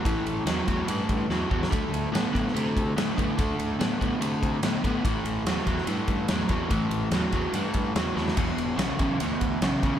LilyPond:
<<
  \new Staff \with { instrumentName = "Overdriven electric guitar" } { \clef bass \time 4/4 \key a \mixolydian \tempo 4 = 144 <a, e>4 <a, fis>8 <a, fis>8 <a, e>4 <a, fis>8 <a, fis>8 | <d a>4 <d b>8 <d b>8 <d a>4 <d b>8 <d b>8 | <d a>4 <d b>8 <d b>8 <d a>4 <d b>8 <d b>8 | <a, e>4 <a, fis>8 <a, fis>8 <a, e>4 <a, fis>8 <a, fis>8 |
<a, e>4 <a, fis>8 <a, fis>8 <a, e>4 <a, fis>8 <a, fis>8 | <e, b,>4 <e, cis>8 <e, cis>8 <e, b,>4 <e, cis>8 <e, cis>8 | }
  \new Staff \with { instrumentName = "Fingered electric bass" } { \clef bass \time 4/4 \key a \mixolydian a,,8 a,,8 e,8 e,8 g,8 g,8 e,8 e,8 | d,8 d,8 a,8 a,8 c8 c8 a,8 a,8 | d,8 d,8 a,8 a,8 c8 c8 a,8 a,8 | a,,8 a,,8 e,8 e,8 g,8 g,8 e,8 e,8 |
a,,8 a,,8 e,8 e,8 g,8 g,8 e,8 e,8 | e,,8 e,,8 b,,8 b,,8 d,8 d,8 b,,8 b,,8 | }
  \new DrumStaff \with { instrumentName = "Drums" } \drummode { \time 4/4 <bd cymr>8 cymr8 <cymr sn>8 <bd cymr>8 cymr8 <bd cymr>8 sn8 bd16 sn16 | <bd cymr>8 cymr8 <cymr sn>8 <bd cymr>16 sn16 cymr8 <bd cymr>8 <cymr sn>8 <bd cymr>8 | <bd cymr>8 cymr8 <cymr sn>8 <bd cymr>8 cymr8 <bd cymr>8 <cymr sn>8 <bd cymr>8 | <bd cymr>8 cymr8 <cymr sn>16 sn16 <bd cymr>16 sn16 cymr8 <bd cymr>8 <cymr sn>8 <bd cymr>8 |
<bd cymr>8 cymr8 <cymr sn>8 <bd cymr>8 cymr8 <bd cymr>8 <cymr sn>8 sn16 sn16 | <cymc bd cymr>8 cymr8 <cymr sn>8 <bd cymr>8 cymr8 <bd cymr>8 <cymr sn>8 <bd cymr>8 | }
>>